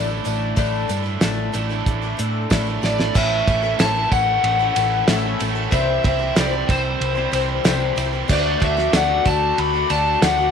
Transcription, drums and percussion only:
0.10 tambourine
0.25 closed hi-hat, tambourine
0.57 kick, closed hi-hat, tambourine
0.74 tambourine
0.89 closed hi-hat, tambourine
1.06 tambourine
1.21 snare, closed hi-hat, tambourine
1.54 closed hi-hat, tambourine
1.70 tambourine
1.86 kick, closed hi-hat, tambourine
2.03 tambourine
2.18 closed hi-hat, tambourine
2.50 kick, snare, closed hi-hat, tambourine
2.67 tambourine
2.83 snare, tambourine
2.99 snare, tambourine
3.15 kick, crash, tambourine
3.48 kick, ride, tambourine
3.79 snare, ride, tambourine
4.12 kick, ride, tambourine
4.44 ride
4.76 ride, tambourine
5.08 snare, ride, tambourine
5.40 ride, tambourine
5.72 kick, ride, tambourine
6.04 kick, ride, tambourine
6.36 snare, ride, tambourine
6.69 kick, ride, tambourine
7.01 ride
7.33 ride, tambourine
7.65 snare, ride, tambourine
7.97 ride, tambourine
8.29 kick, tambourine, crash
8.62 kick, ride, tambourine
8.78 snare
8.93 snare, ride, tambourine
9.25 kick, ride, tambourine
9.58 ride
9.90 ride, tambourine
10.22 snare, ride, tambourine

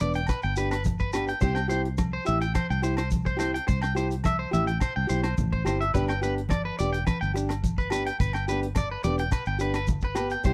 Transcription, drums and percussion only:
0.00 closed hi-hat, high conga
0.14 closed hi-hat, shekere
0.27 kick, cross-stick, closed hi-hat, muted conga, low agogo, shekere
0.42 shekere
0.56 closed hi-hat, shekere
0.71 cross-stick, closed hi-hat, low agogo, shekere
0.84 kick, closed hi-hat, muted conga, high conga, low conga, shekere
0.99 kick, shekere
1.13 cross-stick, closed hi-hat, low agogo, shekere
1.28 closed hi-hat, shekere
1.41 kick, closed hi-hat, muted conga, shekere
1.56 cross-stick, low agogo
1.70 closed hi-hat, muted conga, shekere
1.85 closed hi-hat
1.98 kick, cross-stick, closed hi-hat, high conga, low agogo, shekere
2.26 closed hi-hat, shekere
2.42 closed hi-hat, shekere
2.55 kick, cross-stick, closed hi-hat, muted conga, high conga, low agogo, shekere
2.71 shekere
2.83 closed hi-hat, shekere
2.97 cross-stick, closed hi-hat, low agogo, shekere
3.11 kick, closed hi-hat, muted conga, high conga, shekere
3.26 kick, shekere
3.39 cross-stick, closed hi-hat, low agogo, shekere
3.55 closed hi-hat, shekere
3.68 kick, closed hi-hat, muted conga, shekere
3.82 cross-stick, low agogo, shekere
3.96 closed hi-hat, muted conga, shekere
4.11 closed hi-hat, shekere
4.24 kick, cross-stick, closed hi-hat, high conga, low agogo, shekere
4.53 closed hi-hat, high conga, shekere
4.67 closed hi-hat, shekere
4.80 kick, cross-stick, closed hi-hat, muted conga, low agogo, shekere
5.09 closed hi-hat, shekere
5.24 cross-stick, closed hi-hat, low agogo
5.38 kick, closed hi-hat, muted conga, high conga, low conga, shekere
5.53 kick
5.66 cross-stick, closed hi-hat, low agogo, shekere
5.81 closed hi-hat
5.94 kick, closed hi-hat, muted conga, shekere
6.08 cross-stick, low agogo
6.22 closed hi-hat, muted conga, shekere
6.38 closed hi-hat
6.49 kick, cross-stick, closed hi-hat, high conga, low agogo, shekere
6.78 closed hi-hat, shekere
6.94 closed hi-hat, shekere
7.07 kick, cross-stick, closed hi-hat, muted conga, high conga, low agogo, shekere
7.22 shekere
7.35 closed hi-hat, shekere
7.49 cross-stick, closed hi-hat, low agogo, shekere
7.64 kick, closed hi-hat, muted conga, high conga, shekere
7.78 kick, shekere
7.90 cross-stick, closed hi-hat, low agogo, shekere
8.06 closed hi-hat, shekere
8.19 kick, closed hi-hat, muted conga, shekere
8.33 cross-stick, low agogo
8.48 closed hi-hat, muted conga, shekere
8.63 closed hi-hat
8.75 kick, cross-stick, closed hi-hat, high conga, low agogo, shekere
9.04 closed hi-hat, high conga, shekere
9.18 closed hi-hat, shekere
9.31 kick, cross-stick, closed hi-hat, muted conga, low agogo, shekere
9.46 shekere
9.59 closed hi-hat, shekere
9.74 cross-stick, closed hi-hat, low agogo, shekere
9.87 kick, closed hi-hat, muted conga, high conga, low conga, shekere
10.01 kick, shekere
10.15 cross-stick, closed hi-hat, low agogo, shekere
10.30 closed hi-hat, shekere
10.44 kick, closed hi-hat, muted conga, shekere

